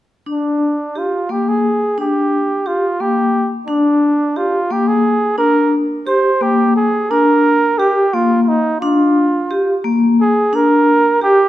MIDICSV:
0, 0, Header, 1, 3, 480
1, 0, Start_track
1, 0, Tempo, 684151
1, 189, Time_signature, 5, 3, 24, 8
1, 8059, End_track
2, 0, Start_track
2, 0, Title_t, "Flugelhorn"
2, 0, Program_c, 0, 56
2, 214, Note_on_c, 0, 62, 52
2, 688, Note_on_c, 0, 65, 50
2, 699, Note_off_c, 0, 62, 0
2, 920, Note_on_c, 0, 67, 60
2, 930, Note_off_c, 0, 65, 0
2, 1042, Note_on_c, 0, 68, 64
2, 1052, Note_off_c, 0, 67, 0
2, 1395, Note_off_c, 0, 68, 0
2, 1401, Note_on_c, 0, 67, 66
2, 1874, Note_on_c, 0, 65, 58
2, 1884, Note_off_c, 0, 67, 0
2, 2109, Note_on_c, 0, 67, 66
2, 2120, Note_off_c, 0, 65, 0
2, 2462, Note_off_c, 0, 67, 0
2, 2573, Note_on_c, 0, 62, 65
2, 3065, Note_on_c, 0, 65, 64
2, 3076, Note_off_c, 0, 62, 0
2, 3311, Note_on_c, 0, 67, 68
2, 3322, Note_off_c, 0, 65, 0
2, 3421, Note_on_c, 0, 68, 75
2, 3432, Note_off_c, 0, 67, 0
2, 3772, Note_off_c, 0, 68, 0
2, 3776, Note_on_c, 0, 70, 80
2, 4047, Note_off_c, 0, 70, 0
2, 4260, Note_on_c, 0, 72, 70
2, 4505, Note_on_c, 0, 67, 76
2, 4515, Note_off_c, 0, 72, 0
2, 4741, Note_off_c, 0, 67, 0
2, 4745, Note_on_c, 0, 68, 73
2, 4985, Note_on_c, 0, 70, 92
2, 4995, Note_off_c, 0, 68, 0
2, 5460, Note_on_c, 0, 67, 72
2, 5471, Note_off_c, 0, 70, 0
2, 5709, Note_on_c, 0, 65, 75
2, 5719, Note_off_c, 0, 67, 0
2, 5911, Note_off_c, 0, 65, 0
2, 5911, Note_on_c, 0, 65, 47
2, 5951, Note_on_c, 0, 63, 68
2, 5962, Note_off_c, 0, 65, 0
2, 6175, Note_off_c, 0, 63, 0
2, 6179, Note_on_c, 0, 65, 64
2, 6879, Note_off_c, 0, 65, 0
2, 7164, Note_on_c, 0, 68, 76
2, 7406, Note_on_c, 0, 70, 89
2, 7417, Note_off_c, 0, 68, 0
2, 7873, Note_off_c, 0, 70, 0
2, 7877, Note_on_c, 0, 67, 77
2, 8059, Note_off_c, 0, 67, 0
2, 8059, End_track
3, 0, Start_track
3, 0, Title_t, "Vibraphone"
3, 0, Program_c, 1, 11
3, 185, Note_on_c, 1, 62, 55
3, 435, Note_off_c, 1, 62, 0
3, 670, Note_on_c, 1, 67, 42
3, 794, Note_off_c, 1, 67, 0
3, 907, Note_on_c, 1, 58, 49
3, 1155, Note_off_c, 1, 58, 0
3, 1387, Note_on_c, 1, 62, 54
3, 1635, Note_off_c, 1, 62, 0
3, 1865, Note_on_c, 1, 67, 49
3, 1989, Note_off_c, 1, 67, 0
3, 2105, Note_on_c, 1, 58, 50
3, 2350, Note_off_c, 1, 58, 0
3, 2580, Note_on_c, 1, 62, 65
3, 2826, Note_off_c, 1, 62, 0
3, 3061, Note_on_c, 1, 67, 51
3, 3184, Note_off_c, 1, 67, 0
3, 3300, Note_on_c, 1, 58, 55
3, 3547, Note_off_c, 1, 58, 0
3, 3773, Note_on_c, 1, 62, 68
3, 4024, Note_off_c, 1, 62, 0
3, 4257, Note_on_c, 1, 67, 57
3, 4383, Note_off_c, 1, 67, 0
3, 4496, Note_on_c, 1, 58, 56
3, 4750, Note_off_c, 1, 58, 0
3, 4988, Note_on_c, 1, 62, 64
3, 5239, Note_off_c, 1, 62, 0
3, 5470, Note_on_c, 1, 67, 58
3, 5596, Note_off_c, 1, 67, 0
3, 5707, Note_on_c, 1, 58, 58
3, 5958, Note_off_c, 1, 58, 0
3, 6189, Note_on_c, 1, 62, 73
3, 6439, Note_off_c, 1, 62, 0
3, 6669, Note_on_c, 1, 67, 56
3, 6795, Note_off_c, 1, 67, 0
3, 6906, Note_on_c, 1, 58, 63
3, 7155, Note_off_c, 1, 58, 0
3, 7387, Note_on_c, 1, 62, 64
3, 7635, Note_off_c, 1, 62, 0
3, 7869, Note_on_c, 1, 67, 58
3, 7992, Note_off_c, 1, 67, 0
3, 8059, End_track
0, 0, End_of_file